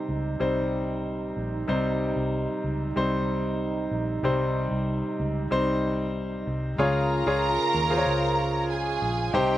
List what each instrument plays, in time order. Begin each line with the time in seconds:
Already playing: grand piano C3 G3 C4 D#4 C5, french horn section C3 G3 D#4
0.09 fingered electric bass C#2
0.40 fingered electric bass C2, grand piano G3 C4 D#4 C5
1.37 fingered electric bass A#1
1.68 fingered electric bass C2, grand piano C3 G3 C4 D#4 C5
2.16 fingered electric bass C2
2.64 fingered electric bass C#2
2.96 fingered electric bass C2, grand piano G3 C4 D#4 C5
3.91 fingered electric bass A#1
4.23 fingered electric bass C2, grand piano C3 G3 C4 D#4 C5
4.71 fingered electric bass C2
5.20 fingered electric bass C#2
5.51 fingered electric bass C2, grand piano G3 C4 D#4 C5
6.47 fingered electric bass C2
6.78 fingered electric bass C#2, grand piano C#3 F4 G#4 C#5, french horn section C#3 G#3 F4, violin section A#4 A#5
7.26 fingered electric bass C#2, grand piano F4 G#4 C#5
7.74 fingered electric bass D#2
7.90 grand piano F4 G#4 C5
7.98 grand piano C#5
8.06 fingered electric bass C#2
8.70 violin section G#4 G#5
9.02 fingered electric bass A#1
9.33 fingered electric bass C2, grand piano C3 D#4 G4 C5, french horn section C3 G3 D#4, violin section G4 G5